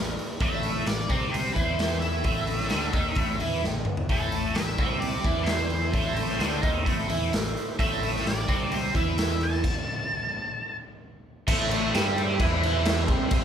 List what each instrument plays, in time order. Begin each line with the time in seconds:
Already playing: picked electric bass A1, overdriven electric guitar A2
0.19 open hi-hat
0.40 picked electric bass A1, overdriven electric guitar A2 A3, lead electric guitar E5, kick, open hi-hat
0.63 open hi-hat
0.86 picked electric bass A1, overdriven electric guitar A2, lead electric guitar D5, snare, open hi-hat
1.09 picked electric bass C2, overdriven electric guitar C3 C4, kick, open hi-hat
1.32 lead electric guitar C5, open hi-hat
1.54 picked electric bass E2, overdriven electric guitar E3 E4, lead electric guitar C5, kick, open hi-hat
1.79 snare, open hi-hat
2.00 lead electric guitar E5, open hi-hat
2.24 picked electric bass A1, overdriven electric guitar A2 A3, kick, open hi-hat
2.47 open hi-hat
2.60 snare
2.70 picked electric bass D2, overdriven electric guitar D3 D4, snare, open hi-hat
2.93 picked electric bass D#2, overdriven electric guitar D#3 D#4, kick, open hi-hat
3.15 picked electric bass A1, overdriven electric guitar A2 A3, kick, open hi-hat
3.40 picked electric bass E2, overdriven electric guitar E3 E4, open hi-hat
3.64 picked electric bass A1, overdriven electric guitar A2, snare
3.74 high tom
3.85 mid tom
3.97 floor tom
4.09 picked electric bass A1, overdriven electric guitar A2 A3, tonewheel organ A3 E4 C5, lead electric guitar A4, kick, open hi-hat
4.32 open hi-hat
4.55 picked electric bass A1, overdriven electric guitar A2, lead electric guitar E5, snare, open hi-hat
4.78 picked electric bass C2, overdriven electric guitar C3 C4, kick, open hi-hat
4.99 lead electric guitar D5, open hi-hat
5.24 picked electric bass E2, overdriven electric guitar E3 E4, kick, open hi-hat
5.43 lead electric guitar C5, open hi-hat
5.47 snare
5.67 lead electric guitar C5, open hi-hat
5.93 picked electric bass A1, overdriven electric guitar A2 A3, kick, open hi-hat
6.17 open hi-hat
6.29 snare
6.39 picked electric bass D2, overdriven electric guitar D3 D4, snare, open hi-hat
6.63 picked electric bass D#2, overdriven electric guitar D#3 D#4, kick, open hi-hat
6.85 picked electric bass A1, overdriven electric guitar A2 A3, kick, open hi-hat
7.09 picked electric bass E2, overdriven electric guitar E3 E4, open hi-hat
7.33 picked electric bass A1, overdriven electric guitar A2, snare, open hi-hat
7.57 open hi-hat
7.79 picked electric bass A1, overdriven electric guitar A2 A3, tonewheel organ A3 E4 C5, lead electric guitar E5, kick, open hi-hat
8.03 lead electric guitar E5, open hi-hat
8.16 snare
8.25 picked electric bass A1, overdriven electric guitar A2, lead electric guitar D5, snare, open hi-hat
8.48 picked electric bass C2, overdriven electric guitar C3 C4, kick, open hi-hat
8.72 lead electric guitar C5, open hi-hat
8.94 picked electric bass E2, overdriven electric guitar E3 E4, lead electric guitar E5, kick, open hi-hat
9.18 snare, open hi-hat
9.41 lead electric guitar A5, open hi-hat
9.64 kick, crash
11.47 picked electric bass A1, overdriven electric guitar A2 A3, tonewheel organ A3 E4 C5, kick, crash
11.71 crash
11.94 picked electric bass G2, overdriven electric guitar G3 G4, snare, crash
12.18 crash
12.39 picked electric bass E2, overdriven electric guitar E3 E4, kick, crash
12.63 crash
12.85 snare, crash
13.08 picked electric bass C2, overdriven electric guitar C3 C4, kick, crash
13.31 kick, crash